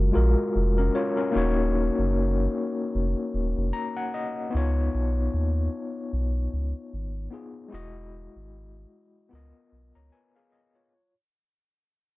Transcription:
Already playing: sub bass F#1, tine electric piano G#3 F4 F#4 A#4
0.12 tine electric piano G#3 F4 F#4 A#4
0.16 sub bass A#1
0.56 sub bass F1
0.78 tine electric piano C#4 A#4
0.95 tine electric piano F4 C#5
1.17 tine electric piano C#4 A#4
1.31 tine electric piano A#3 D#4
1.35 sub bass D#1, tine electric piano F#4 C#5
1.99 sub bass F#1
2.95 sub bass F1
3.34 sub bass D#1
3.57 sub bass F1
3.73 tine electric piano A#5
3.97 tine electric piano F#5
4.14 tine electric piano D#5
4.50 tine electric piano B3 D#4
4.55 sub bass C#2, tine electric piano F4 C#5
4.94 sub bass B1
5.34 sub bass D#2
6.13 sub bass B1
6.53 sub bass C#2
6.93 sub bass G#1
7.30 tine electric piano B3 D#4 F4 G#4
7.68 tine electric piano G#3 E4
7.72 sub bass E1, tine electric piano F#4 D#5
8.36 sub bass G#1
9.29 sub bass C#2, tine electric piano B3 F4 A#4
9.35 tine electric piano D#5
9.72 sub bass B1
9.95 sub bass C#2, tine electric piano C#5 A#5
10.12 tine electric piano B4 G#5
10.36 tine electric piano G#4 F5
10.52 tine electric piano D#5
10.75 tine electric piano F4 C#5

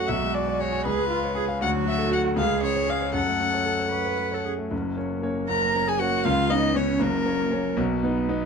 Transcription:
Already playing: grand piano F#2 A3 F#4 A4 C#5 F#5 C#6, cello F#4
0.08 grand piano B1, violin E5
0.22 grand piano G#3
0.34 grand piano G#4, violin D5
0.47 grand piano D5
0.60 grand piano G#4, violin C#5
0.72 grand piano G#5
0.85 grand piano C#2, cello G#4, violin B4
0.98 grand piano G#3
1.10 cello F4, grand piano F4
1.23 grand piano C#5
1.35 grand piano G#4, cello G#4
1.48 grand piano F5
1.61 grand piano D2, cello F#4, violin F#5
1.74 grand piano F#3
1.86 grand piano F#4, violin E5
1.98 grand piano A4
2.12 grand piano F#4, violin F#5
2.24 grand piano F#5
2.36 grand piano C#2, cello G#4, violin F5
2.49 grand piano G#3
2.61 grand piano C#4, violin C#5
2.74 grand piano C#5
2.88 grand piano G#4, violin F5
3.01 grand piano C#5
3.13 grand piano F#2, cello A4, violin F#5
3.27 grand piano A3
3.40 grand piano C#4
3.53 grand piano C#5
3.66 grand piano A4
3.79 grand piano C#5
3.92 cello B4, grand piano C#6
4.06 grand piano C#5
4.18 grand piano A4
4.31 cello A4, grand piano C#5
4.45 grand piano C#4, cello G#4
4.58 grand piano A3
4.71 grand piano F#1 F#2
4.97 grand piano A#3 C#4 C#5
5.22 grand piano A#3 C#4 C#5
5.48 grand piano F#1 F#2, cello A#4, violin A#5
5.74 grand piano A#3 C#4 C#5
5.87 cello G#4, violin G#5
5.99 grand piano A#3 C#4 C#5, cello F#4, violin F#5
6.25 grand piano C#2 C#3, cello F4, violin F5
6.49 grand piano B3 C#4 C#5, cello D#4, violin D#5
6.74 grand piano B3 C#4 C#5, cello C#4, violin C#5
6.99 grand piano F#1 F#2, cello A#3, violin A#4
7.24 grand piano A#3 C#4 C#5
7.51 grand piano A#3 C#4 C#5
7.77 grand piano B1 B2
8.03 grand piano B3 D#4 B4
8.29 grand piano B3 D#4 B4

